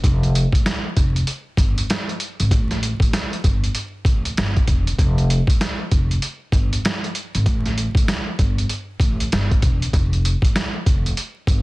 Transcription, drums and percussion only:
0.04 kick loud
0.04 closed hi-hat medium
0.23 closed hi-hat soft
0.35 closed hi-hat medium
0.52 kick medium
0.52 closed hi-hat medium
0.66 snare loud
0.66 closed hi-hat loud
0.97 kick medium
0.97 closed hi-hat medium
1.16 closed hi-hat soft
1.27 closed hi-hat loud
1.57 kick loud
1.57 closed hi-hat medium
1.78 closed hi-hat medium
1.90 snare loud
1.90 closed hi-hat medium
2.09 closed hi-hat soft
2.20 closed hi-hat medium
2.40 closed hi-hat medium
2.51 kick loud
2.51 closed hi-hat medium
2.71 snare soft
2.71 closed hi-hat soft
2.83 closed hi-hat medium
3.00 kick medium
3.00 closed hi-hat medium
3.13 snare loud
3.13 closed hi-hat loud
3.33 closed hi-hat soft
3.44 kick medium
3.44 closed hi-hat medium
3.64 closed hi-hat soft
3.75 closed hi-hat loud
4.05 kick loud
4.05 closed hi-hat medium
4.25 closed hi-hat medium
4.37 snare loud
4.37 closed hi-hat medium
4.57 kick medium
4.57 closed hi-hat soft
4.68 kick loud
4.68 closed hi-hat medium
4.87 closed hi-hat medium
4.99 kick loud
4.99 closed hi-hat medium
5.18 closed hi-hat soft
5.30 closed hi-hat medium
5.47 kick medium
5.47 closed hi-hat medium
5.61 snare loud
5.61 closed hi-hat loud
5.91 kick medium
5.91 closed hi-hat medium
6.11 closed hi-hat soft
6.22 closed hi-hat loud
6.52 kick medium
6.52 closed hi-hat medium
6.73 closed hi-hat medium
6.85 snare loud
6.85 closed hi-hat medium
7.04 closed hi-hat soft
7.15 closed hi-hat medium
7.35 closed hi-hat medium
7.46 kick loud
7.46 closed hi-hat medium
7.66 snare soft
7.66 closed hi-hat soft
7.78 closed hi-hat medium
7.95 kick medium
7.95 closed hi-hat medium
8.08 snare loud
8.08 closed hi-hat loud
8.39 kick medium
8.39 closed hi-hat medium
8.58 closed hi-hat soft
8.69 closed hi-hat loud
9.00 kick medium
9.00 closed hi-hat medium
9.20 closed hi-hat medium
9.32 snare loud
9.32 closed hi-hat medium
9.51 kick medium
9.51 closed hi-hat soft
9.62 kick loud
9.62 closed hi-hat medium
9.82 closed hi-hat medium
9.93 kick loud
9.93 closed hi-hat medium
10.13 closed hi-hat soft
10.25 closed hi-hat medium
10.42 kick medium
10.42 closed hi-hat medium
10.56 snare loud
10.56 closed hi-hat loud
10.86 kick medium
10.86 closed hi-hat medium
11.06 closed hi-hat soft
11.17 closed hi-hat loud
11.47 kick loud
11.47 closed hi-hat medium

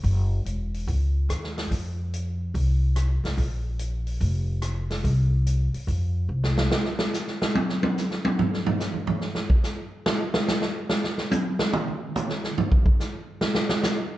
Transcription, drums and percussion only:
0.04 kick soft
0.04 open hi-hat soft
0.46 closed hi-hat medium
0.74 open hi-hat soft
0.88 kick soft
0.88 open hi-hat soft
1.30 cross-stick medium
1.30 closed hi-hat medium
1.44 snare soft
1.58 snare soft
1.58 open hi-hat soft
1.71 kick soft
1.71 open hi-hat medium
2.14 closed hi-hat medium
2.55 kick soft
2.55 open hi-hat soft
2.96 cross-stick medium
2.96 closed hi-hat medium
3.25 snare soft
3.25 open hi-hat soft
3.38 kick soft
3.38 open hi-hat soft
3.79 closed hi-hat medium
4.07 open hi-hat soft
4.21 kick soft
4.21 open hi-hat soft
4.62 cross-stick medium
4.62 closed hi-hat medium
4.90 snare soft
4.90 open hi-hat soft
5.04 kick soft
5.04 open hi-hat soft
5.47 closed hi-hat medium
5.74 open hi-hat soft
5.88 kick soft
5.88 open hi-hat soft
6.44 snare medium
6.58 snare medium
6.71 snare loud
6.85 snare soft
6.99 snare medium
7.14 snare soft
7.14 hi-hat pedal medium
7.28 snare soft
7.42 snare loud
7.55 high tom medium
7.69 snare soft
7.83 high tom medium
7.97 snare soft
7.97 hi-hat pedal medium
8.11 snare soft
8.25 high tom loud
8.39 floor tom loud
8.54 snare soft
8.66 floor tom loud
8.80 snare soft
8.80 hi-hat pedal medium
8.94 floor tom soft
9.07 floor tom medium
9.21 snare soft
9.35 snare soft
9.50 kick medium
9.64 snare soft
9.64 hi-hat pedal medium
10.06 snare loud
10.34 snare loud
10.48 snare loud
10.48 hi-hat pedal medium
10.62 snare soft
10.89 snare loud
11.04 snare soft
11.18 snare medium
11.31 hi-hat pedal medium
11.31 high tom loud
11.59 snare medium
11.73 mid tom loud
11.88 mid tom soft
12.16 hi-hat pedal medium
12.16 mid tom medium
12.29 snare medium
12.44 snare soft
12.58 floor tom medium
12.72 kick medium
12.86 kick medium
13.00 snare soft
13.00 hi-hat pedal medium
13.41 snare loud
13.55 snare medium
13.69 snare loud
13.83 snare loud
13.83 hi-hat pedal medium

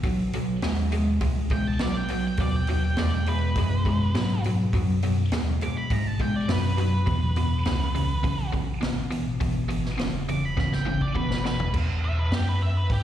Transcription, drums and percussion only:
0.03 kick loud
0.03 open hi-hat medium
0.33 open hi-hat soft
0.62 snare loud
0.62 open hi-hat medium
0.92 open hi-hat soft
1.21 kick loud
1.21 open hi-hat medium
1.50 kick medium
1.50 open hi-hat soft
1.79 snare medium
1.79 open hi-hat medium
2.08 open hi-hat soft
2.37 kick loud
2.37 open hi-hat medium
2.67 open hi-hat soft
2.97 snare medium
2.97 open hi-hat medium
3.26 open hi-hat soft
3.55 kick loud
3.55 open hi-hat medium
3.85 kick medium
3.85 open hi-hat soft
4.15 snare medium
4.15 open hi-hat medium
4.44 open hi-hat soft
4.73 kick loud
4.73 open hi-hat medium
5.02 open hi-hat soft
5.32 snare loud
5.32 open hi-hat medium
5.61 open hi-hat soft
5.90 kick loud
5.90 open hi-hat medium
6.19 kick medium
6.19 open hi-hat soft
6.49 snare loud
6.49 open hi-hat medium
6.78 open hi-hat soft
7.07 kick loud
7.07 open hi-hat medium
7.36 open hi-hat soft
7.65 snare loud
7.65 open hi-hat medium
7.95 open hi-hat soft
8.24 kick loud
8.24 open hi-hat medium
8.53 kick medium
8.53 open hi-hat soft
8.82 snare loud
8.82 open hi-hat medium
9.12 open hi-hat medium
9.41 kick loud
9.41 open hi-hat medium
9.70 open hi-hat soft
9.85 snare soft
9.99 snare loud
9.99 open hi-hat medium
10.29 open hi-hat soft
10.58 kick loud
10.58 snare medium
10.72 snare soft
10.86 mid tom medium
11.01 kick medium
11.16 kick medium
11.31 snare medium
11.45 snare medium
11.60 floor tom medium
11.74 kick loud
11.74 crash loud
12.32 snare loud
12.32 open hi-hat soft
12.90 kick loud
12.90 open hi-hat medium

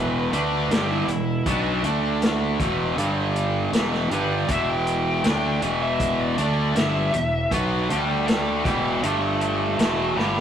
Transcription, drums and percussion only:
0.33 closed hi-hat medium
0.71 snare loud
0.71 closed hi-hat medium
1.08 closed hi-hat soft
1.46 kick loud
1.46 closed hi-hat medium
1.84 closed hi-hat medium
2.22 snare loud
2.22 closed hi-hat medium
2.60 kick loud
2.60 closed hi-hat medium
2.98 closed hi-hat medium
3.36 closed hi-hat medium
3.73 snare medium
3.73 closed hi-hat medium
3.94 snare soft
4.11 closed hi-hat medium
4.48 kick loud
4.48 closed hi-hat medium
4.87 closed hi-hat medium
5.24 snare medium
5.24 closed hi-hat medium
5.62 closed hi-hat medium
6.00 kick loud
6.00 closed hi-hat medium
6.38 closed hi-hat medium
6.76 snare medium
6.76 closed hi-hat medium
7.14 closed hi-hat medium
7.51 kick medium
7.51 closed hi-hat medium
7.90 closed hi-hat medium
8.28 snare medium
8.28 closed hi-hat medium
8.65 kick loud
8.65 closed hi-hat medium
9.03 closed hi-hat medium
9.41 closed hi-hat medium
9.79 snare loud
9.79 closed hi-hat medium
10.19 snare medium

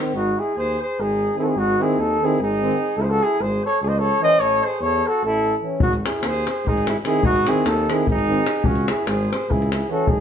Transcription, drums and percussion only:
5.80 davul low loud
5.93 davul high soft
6.06 davul high medium
6.23 davul high medium
6.47 davul high medium
6.67 davul low medium
6.77 davul high soft
6.87 davul high medium
7.05 davul high medium
7.14 davul high soft
7.23 davul low medium
7.35 davul high soft
7.47 davul high medium
7.66 davul high medium
7.90 davul high medium
8.07 davul low medium
8.18 davul high soft
8.47 davul high medium
8.56 davul high soft
8.64 davul low medium
8.75 davul high soft
8.88 davul high medium
9.07 davul high medium
9.33 davul high medium
9.51 davul low medium
9.62 davul high soft
9.72 davul high medium
10.07 davul low medium

